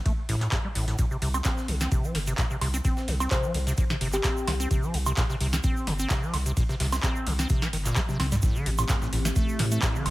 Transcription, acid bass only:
0.06 0.13 A3 medium
0.29 0.36 A1 medium
0.41 0.47 A2 medium
0.52 0.59 G2 medium
0.65 0.68 G3 medium
0.75 0.86 A2 medium
0.88 0.97 A2 medium
1.11 1.17 C3 medium
1.22 1.29 C3 medium
1.34 1.38 C4 medium
1.45 1.70 C4 medium
1.68 1.75 C3 loud
1.81 1.90 C4 medium
1.92 2.06 C3 medium
2.04 2.16 F3 medium
2.15 2.19 C3 medium
2.27 2.33 C3 medium
2.38 2.45 A#2 medium
2.51 2.57 C3 medium
2.61 2.68 C3 medium
2.74 2.77 C4 medium
2.85 3.09 C4 medium
3.08 3.15 C3 medium
3.20 3.29 C4 medium
3.31 3.45 C3 medium
3.44 3.56 F3 medium
3.55 3.59 C3 medium
3.67 3.73 C3 medium
3.78 3.85 A#2 medium
3.90 3.96 C3 medium
4.01 4.08 C3 medium
4.13 4.17 C4 medium
4.24 4.49 C4 medium
4.48 4.54 C3 loud
4.60 4.69 C4 medium
4.71 4.85 C3 medium
4.83 4.96 F3 medium
4.94 4.98 C3 medium
5.06 5.12 C3 medium
5.17 5.24 A#2 medium
5.30 5.36 C3 medium
5.41 5.47 C3 medium
5.53 5.57 C4 medium
5.64 5.89 C4 medium
5.87 5.94 C3 medium
5.99 6.08 C4 medium
6.10 6.24 C3 medium
6.23 6.35 F3 medium
6.34 6.38 C3 medium
6.46 6.52 C3 medium
6.57 6.64 A#2 medium
6.69 6.75 C3 medium
6.80 6.87 C3 medium
6.92 6.96 C4 medium
7.03 7.28 C4 medium
7.27 7.33 C3 loud
7.39 7.48 C4 medium
7.50 7.64 C3 medium
7.62 7.68 F3 medium
7.73 7.77 D#3 medium
7.86 7.98 A#2 medium
7.96 8.00 C4 loud
8.09 8.18 C3 loud
8.20 8.26 C4 medium
8.32 8.36 G3 loud
8.43 8.57 A2 medium
8.55 8.68 D3 medium
8.66 8.70 A2 medium
8.79 8.85 A2 medium
8.89 8.96 G2 medium
9.02 9.08 A2 medium
9.13 9.20 A2 medium
9.25 9.29 A3 medium
9.36 9.61 A3 medium
9.59 9.66 A2 medium
9.72 9.81 A3 medium
9.82 9.96 A2 medium
9.95 10.07 D3 medium
10.06 10.10 A2 medium

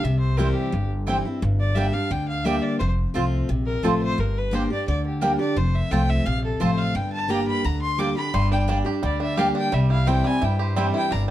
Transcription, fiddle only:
0.03 0.19 E5 medium
0.19 0.39 C5 medium
0.37 0.55 A#4 medium
0.54 0.89 G4 medium
1.60 1.77 D5 medium
1.75 1.95 E5 medium
1.93 2.13 F5 loud
2.11 2.27 G5 medium
2.28 2.46 F5 medium
2.45 2.63 E5 medium
2.62 2.78 D5 loud
2.79 2.90 C5 medium
3.66 3.85 A#4 medium
3.83 4.01 A4 medium
4.02 4.21 C5 loud
4.20 4.39 A#4 medium
4.38 4.56 B4 loud
4.54 4.71 C5 medium
4.72 4.87 D5 medium
4.88 5.04 D5 medium
5.06 5.24 G4 medium
5.23 5.39 A#4 medium
5.40 5.58 D5 loud
5.57 5.76 C5 medium
5.75 5.93 E5 loud
5.91 6.11 G5 loud
6.10 6.27 E5 loud
6.25 6.43 F5 loud
6.44 6.62 A4 medium
6.61 6.79 C5 medium
6.78 6.96 F5 loud
6.95 7.12 G5 medium
7.12 7.31 A5 loud
7.30 7.47 A#5 medium
7.47 7.67 B5 loud
7.65 7.81 A#5 loud
7.82 8.00 C6 loud
7.99 8.16 D6 loud
8.16 8.35 B5 loud
8.34 8.51 C6 loud
8.52 8.62 G5 loud
9.04 9.20 D5 medium
9.22 9.40 E5 loud
9.39 9.56 F5 medium
9.57 9.75 G5 loud
9.74 9.90 E5 loud
9.91 10.09 F5 loud
10.07 10.28 G5 loud
10.26 10.45 G#5 loud
10.44 10.60 G5 medium
10.61 10.80 C5 medium
10.78 10.94 E5 medium
10.95 11.13 G5 loud
11.12 11.29 A#5 loud

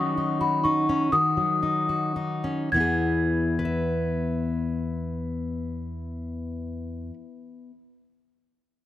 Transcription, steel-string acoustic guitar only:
0.00 1.09 D#3 medium
0.00 1.09 F#3 soft
0.00 0.88 C#4 soft
0.00 0.17 D#4 soft
0.00 0.40 F#4 medium
0.17 0.63 D#4 soft
0.41 1.10 F#4 medium
0.65 1.10 D#4 soft
0.89 1.10 C#4 soft
1.12 2.69 D#3 medium
1.12 1.88 F#4 medium
1.37 2.68 F#3 soft
1.63 2.15 D#4 soft
1.89 2.69 F#4 soft
2.16 2.69 D#4 soft
2.44 2.69 C#4 soft
2.72 7.09 E2 soft
2.72 7.12 E3 soft
2.76 7.13 B3 soft
2.76 3.59 E4 soft
2.80 3.65 G#4 soft
3.59 7.71 B4 soft
3.65 7.74 E5 soft

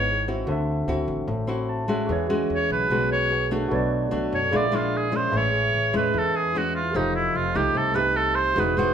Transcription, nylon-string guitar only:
0.00 0.46 G#2 soft
0.28 0.85 C4 medium
0.28 0.85 E4 medium
0.28 0.85 F#4 medium
0.48 1.26 D3 medium
0.88 1.28 C4 medium
0.88 1.28 E4 medium
0.88 1.29 F#4 medium
1.27 2.07 A2 soft
1.47 1.85 C4 medium
1.47 1.85 E4 medium
1.47 1.86 F#4 medium
1.88 2.26 G#3 medium
1.88 2.26 C#4 medium
1.88 2.26 F#4 medium
2.10 2.88 E3 medium
2.30 2.87 G#3 medium
2.30 2.87 C#4 medium
2.30 2.87 F#4 medium
2.90 3.69 B2 soft
2.90 3.30 G#3 soft
2.90 3.31 C#4 soft
2.90 3.31 F#4 medium
3.51 4.08 A3 medium
3.51 4.08 D4 medium
3.51 4.09 F#4 medium
3.71 4.50 B2 medium
4.11 4.38 A3 medium
4.11 4.38 D4 medium
4.11 4.39 F#4 medium
4.52 5.31 A#2 soft
4.52 4.64 G#3 soft
4.52 4.64 D4 soft
4.52 4.64 E4 medium
4.72 5.09 G#3 medium
4.72 5.09 D4 medium
4.72 5.10 E4 medium
5.12 5.49 G#3 medium
5.12 5.49 C#4 medium
5.12 5.50 E4 medium
5.32 6.11 A2 medium
5.93 6.51 G#3 medium
5.93 6.51 C#4 medium
5.93 6.51 E4 medium
6.14 6.92 E3 soft
6.55 6.80 G#3 medium
6.55 6.81 C#4 medium
6.55 6.81 E4 medium
6.94 7.73 F3 medium
6.94 7.34 A3 medium
6.94 7.35 D#4 medium
6.94 7.35 G4 medium
7.55 7.92 A3 medium
7.55 7.92 D#4 medium
7.55 7.92 G4 medium
7.75 8.53 C3 soft
7.94 8.52 A3 medium
7.94 8.52 D#4 medium
7.94 8.53 G4 medium
8.57 8.94 E3 medium
8.57 8.74 G#3 medium
8.57 8.73 D#4 medium
8.57 8.74 F#4 medium
8.77 8.94 G#3 medium
8.77 8.94 D#4 medium
8.77 8.94 F#4 medium

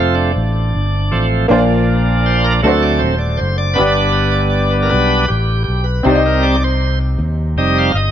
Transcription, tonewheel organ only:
0.00 0.32 F3 soft
0.00 0.32 A3 soft
0.00 0.33 C4 medium
0.00 0.15 F4 medium
0.15 1.26 D4 medium
1.11 1.46 F3 soft
1.11 1.47 A3 soft
1.11 1.47 C4 soft
1.51 2.61 F3 medium
1.51 2.61 A#3 soft
1.51 2.61 D4 medium
2.26 2.46 C5 medium
2.44 2.53 A#4 medium
2.63 3.14 F#3 medium
2.63 3.15 A3 medium
2.63 3.15 C4 medium
2.63 2.84 A4 medium
2.83 3.01 D5 medium
2.99 3.18 C5 medium
3.19 3.40 D5 medium
3.37 3.57 C5 medium
3.58 3.78 D5 loud
3.74 4.88 G3 soft
3.74 4.90 B3 medium
3.74 4.89 D4 medium
3.74 3.94 B4 medium
3.92 4.12 D5 medium
4.13 4.34 B4 medium
4.32 4.41 D5 medium
4.50 4.72 D5 medium
4.71 4.77 B4 medium
4.83 4.91 A#4 medium
4.89 5.25 G3 medium
4.89 5.26 B3 soft
4.89 5.26 D4 medium
4.89 5.30 B4 medium
5.28 5.63 G4 medium
5.64 5.86 G4 medium
5.84 6.05 B4 medium
6.05 6.56 G3 medium
6.05 6.56 C4 soft
6.05 6.57 D#4 medium
6.05 6.23 C5 medium
6.26 6.45 A#4 medium
6.43 6.63 D5 medium
6.64 6.99 C5 medium
7.58 7.92 G3 soft
7.58 7.92 C4 soft
7.58 7.92 D#4 medium
7.58 7.78 D#5 medium
7.78 7.97 F5 medium
7.95 8.11 D#5 medium

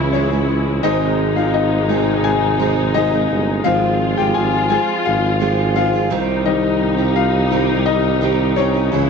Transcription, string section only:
0.00 0.81 C#3 medium
0.00 6.08 G#3 medium
0.00 0.81 E4 medium
0.85 3.64 C3 medium
0.85 3.63 D#4 medium
3.65 6.09 F4 medium
6.13 8.91 G3 medium
6.13 8.91 D#4 medium
8.93 9.10 C#3 medium
8.93 9.10 G#3 medium
8.93 9.10 E4 medium

